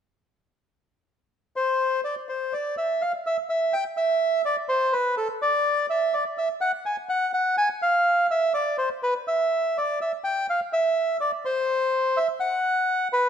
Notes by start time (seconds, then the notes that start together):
1.56 C5
2.05 D5
2.29 C5
2.53 D5
2.78 E5
3.02 F5
3.26 E5
3.50 E5
3.73 G5
3.97 E5
4.45 D5
4.69 C5
4.93 B4
5.17 A4
5.42 D5
5.90 E5
6.14 D5
6.38 E5
6.61 F#5
6.86 G#5
7.09 F#5
7.34 F#5
7.58 G#5
7.82 F5
8.31 E5
8.54 D5
8.78 C5
9.03 B4
9.28 E5
9.78 D5
10.02 E5
10.24 G5
10.50 F5
10.73 E5
11.21 D5
11.45 C5
12.17 E5
12.40 F#5
13.13 B4